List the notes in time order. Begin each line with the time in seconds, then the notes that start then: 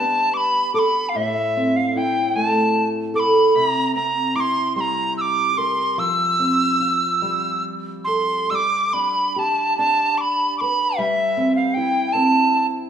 Already playing: G3 B3 D4 G4 A5
0.34 B5 D6
0.74 A4 D6
0.79 B5
1.09 F5
1.15 A2 E5
1.57 C4
1.76 F5
1.96 E4 G5
2.36 A3 A5
3.14 A4 D6
3.20 B5
3.55 C3 A#5
3.95 C4 A#5
4.35 E4 D6
4.40 C6
4.76 G3 C6
4.80 A#5
5.17 D6 E6
5.58 A#4 C6
5.98 F3 E6
6.39 C4
6.80 F4
7.22 G3
8.04 A4 C6
8.50 G3 E6
8.55 D6
8.93 D4 B5
9.35 G4 B5
9.39 A5
9.78 D4 A5
10.18 B5 D6
10.57 B4 B5 D6
10.97 G3 E5
11.37 C4
11.56 F5
11.74 E4 G5
12.13 C4 A5